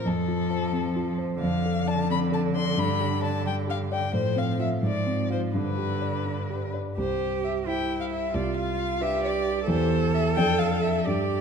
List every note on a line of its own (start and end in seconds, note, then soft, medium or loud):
0.00 0.10 C4 soft
0.00 0.10 C5 soft
0.05 1.38 F2 soft
0.05 1.39 F3 soft
0.05 1.20 A4 medium
0.28 0.65 F4 soft
0.50 0.88 C5 soft
0.73 1.10 C4 soft
0.96 1.33 F4 soft
1.18 1.42 C5 soft
1.41 2.73 F2 soft
1.41 4.10 D3 soft
1.41 1.89 F5 medium
1.66 2.01 A4 soft
1.88 2.24 D5 soft
1.88 2.10 A5 medium
2.10 2.46 C4 soft
2.10 2.19 B5 medium
2.32 2.68 A4 soft
2.32 2.42 A5 medium
2.55 2.78 D5 soft
2.55 2.80 C6 medium
2.77 4.10 G2 soft
2.77 3.23 B5 medium
3.00 3.36 G4 soft
3.22 3.59 D5 soft
3.22 3.46 A5 medium
3.46 3.82 G3 soft
3.46 3.55 G5 medium
3.67 4.04 G4 soft
3.67 3.78 F5 medium
3.92 4.14 D5 soft
3.92 4.14 G5 medium
4.13 4.82 A2 soft
4.13 4.83 F3 soft
4.13 4.40 C5 medium
4.36 4.74 C4 soft
4.36 4.60 F5 medium
4.59 4.81 F4 soft
4.59 4.69 E5 medium
4.59 4.81 F5 soft
4.82 5.52 G#2 soft
4.82 5.57 F3 soft
4.82 5.31 D5 medium
5.06 5.45 C4 soft
5.30 5.52 F4 soft
5.30 5.40 C5 soft
5.30 5.52 F5 soft
5.54 6.93 G2 soft
5.54 6.78 D3 soft
5.54 6.73 B4 medium
5.78 6.17 G4 soft
6.01 6.40 D5 soft
6.25 6.64 D4 soft
6.50 6.88 G4 soft
6.74 6.98 D5 soft
6.98 7.64 C2 soft
6.98 7.69 G4 soft
6.98 7.41 C5 soft
7.44 7.52 E5 soft
7.66 8.30 E4 soft
7.66 8.33 E4 soft
7.66 8.30 G4 soft
7.66 8.30 C5 soft
7.66 8.00 G5 medium
8.01 8.05 F5 soft
8.11 8.36 E5 soft
8.34 8.99 C2 soft
8.34 9.04 F4 soft
8.34 8.56 D5 medium
8.57 9.02 F5 medium
9.01 9.65 D4 soft
9.01 9.65 G4 soft
9.01 9.67 G4 soft
9.01 9.65 B4 soft
9.01 9.24 E5 medium
9.24 9.68 D5 medium
9.67 10.35 E2 soft
9.67 10.33 E4 soft
9.67 10.33 G4 soft
9.67 11.03 A4 medium
9.67 10.33 C5 soft
9.67 10.14 C5 medium
10.14 10.22 E5 medium
10.36 11.04 F2 soft
10.36 11.02 D4 soft
10.36 11.03 A4 soft
10.36 11.03 D5 soft
10.36 10.60 G5 medium
10.59 10.84 F5 medium
10.82 11.07 E5 medium
11.06 11.41 G2 soft
11.06 11.41 G4 soft
11.06 11.41 D5 medium